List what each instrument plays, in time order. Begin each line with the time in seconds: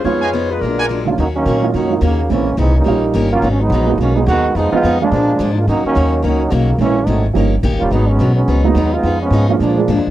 0.04 upright bass F2, steel-string acoustic guitar F3 B3 D#4 G#4, upright piano G#3 B3 D#4 F4, saxophone section B3 F4 G#4 C#5
0.22 trumpet section B4 D#5 F5 G#5
0.33 steel-string acoustic guitar F3 B3 D#4 G#4
0.50 saxophone section G#3 D#4 F4 B4
0.60 upright bass A#1, steel-string acoustic guitar A#2 F#3, saxophone section G#3 D4 F4 A#4
0.64 steel-string acoustic guitar G#3 D4
0.78 trumpet section A#4 D5 F#5 G#5
0.89 steel-string acoustic guitar A#2 F#3 G#3 D4
1.05 upright piano D#2 F#3 A#3 C#4 F4, trombone section G#3 A#3 D4 F4
1.18 upright bass D#2, steel-string acoustic guitar D#3 A#3 C#4 F#4, trombone section F#3 A#3 C#4 D#4
1.35 trombone section D#3 F#3 A#3 C#4
1.45 upright bass A#2, steel-string acoustic guitar D#3 A#3 C#4 F#4
1.62 upright piano F#3 A#3 C#4 D#4 F4
1.74 upright bass F#2, steel-string acoustic guitar D#3 A#3 C#4 F#4, trombone section F#3 A#3 C#4 D#4
1.90 upright piano F#3 A#3 C#4 D#4 F4
2.01 upright bass D#2, trombone section C#3 D#3 F#3 A#3, steel-string acoustic guitar D#3 A#3 C#4 F#4
2.29 upright bass A#1, steel-string acoustic guitar A#2 E3 G#3 C#4, trombone section E3 G#3 A#3 C#4, upright piano G#3 A#3 C4 C#4 E4
2.57 upright bass C2, steel-string acoustic guitar A#2 E3 G#3 C#4, trombone section E3 G#3 C4 D#4
2.76 trombone section G3 A#3 C#4 D#4
2.84 upright bass A#1, steel-string acoustic guitar D#3 A#3 C#4 G4, upright piano G3 A#3 C#4 D#4 F4
3.14 upright bass G1, steel-string acoustic guitar D#3 A#3 C#4 G4
3.32 trombone section F#3 A#3 C#4 F4
3.42 upright bass G#1, steel-string acoustic guitar G#2 F#3 B3 D#4
3.50 trombone section C#4
3.60 trombone section F#3 G#3 B3 D#4
3.70 upright bass A#1, steel-string acoustic guitar G#2 F#3
3.74 steel-string acoustic guitar B3 D#4
3.87 upright piano G#3 A#3 B3 D#4 F#4
3.98 upright bass B1, steel-string acoustic guitar G#2 F#3, trombone section D#3 F#3 A#3 C#4
4.02 steel-string acoustic guitar B3 D#4
4.15 trombone section F#3 G#3 B3 D#4, upright piano G#3 A#3 B3 D#4 G#4
4.26 upright bass D#2, steel-string acoustic guitar G#2 F#3 B3 D#4, trombone section D#3 G#3 B3 F#4
4.55 upright bass F2, steel-string acoustic guitar F3 B3 D#4 G#4, trombone section F3 G#3 B3 D#4
4.72 upright piano F3 G#3 B3 D#4 F4, trombone section G#3 B3 D#4 F4, muted upright bass stroke
4.83 upright bass F2, steel-string acoustic guitar F3 B3 D#4 G#4
5.01 trombone section F3 G#3 A#3 D4, upright piano F3 G#3 A#3 D4 F4
5.12 upright bass A#2, steel-string acoustic guitar A#2 F3 G#3 D4
5.39 upright bass G#2, steel-string acoustic guitar A#2 F3 G#3 D4
5.53 trombone section D#4
5.58 trombone section G#3 A#3 D4 F4
5.68 upright bass F#2, steel-string acoustic guitar D#3 A#3 C#4 F#4, trombone section F#3 A#3 C#4 D#4
5.85 trombone section D#3 F#3 A#3 C#4, muted upright bass stroke
5.95 upright bass D#2, steel-string acoustic guitar D#3 A#3 C#4 F#4
6.23 upright bass C#2, steel-string acoustic guitar D#3 A#3 C#4 F#4, trombone section F#3 A#3 C#4 D#4
6.51 upright bass B1, trombone section C#3 D#3 F#3 A#3, steel-string acoustic guitar D#3 A#3 C#4 F#4
6.78 upright bass A#1, steel-string acoustic guitar A#2 E3 G#3 C#4, trombone section E3 G#3 A#3 C#4, upright piano E3 G#3 A#3 C#4 E4
7.06 upright bass G#1, steel-string acoustic guitar A#2 E3 G#3 C#4, trombone section F#3 A3 C4 D#4
7.33 upright bass G1, steel-string acoustic guitar D#3 A#3, upright piano F3 G3 A#3 C#4 D#4
7.37 steel-string acoustic guitar C#4 G4
7.63 upright bass A#1, steel-string acoustic guitar D#3 A#3 C#4 G4
7.72 upright bass G1
7.79 upright bass D#1, trombone section G3 A#3 C#4 F4
7.91 upright bass G#1, steel-string acoustic guitar G#2 F#3 B3 D#4, trombone section F#3 G#3 B3 D#4
8.08 trombone section F#3 G#3 B3 C#4
8.19 upright bass B1, steel-string acoustic guitar G#2 F#3 B3 D#4
8.35 trombone section F#3 G#3 B3 C#4
8.48 upright bass C#2, steel-string acoustic guitar G#2 F#3 B3 D#4
8.64 upright piano F#3 G#3 A#3 B3 D#4, trombone section F#3 G#3 B3 D#4
8.75 upright bass D#2, steel-string acoustic guitar G#2 F#3 B3 D#4
8.93 trombone section G#3 B3 D#4 F4
9.03 upright bass F2, steel-string acoustic guitar F3 B3 D#4 G#4
9.21 trombone section F3 G#3 B3 C#4
9.30 upright bass G#2, steel-string acoustic guitar F3 B3 D#4 G#4
9.48 trombone section D#3 F#3 A#3 C#4, upright piano F3 G#3 A#3 D4 F4
9.60 upright bass A#2, steel-string acoustic guitar A#2 F3 G#3 D4, trombone section F3 G#3 A#3 D4
9.77 upright piano F3 G#3 A#3 D4 G#4
9.88 upright bass G#2, steel-string acoustic guitar A#2 F3 G#3 D4
9.97 upright bass F2
10.07 upright bass D2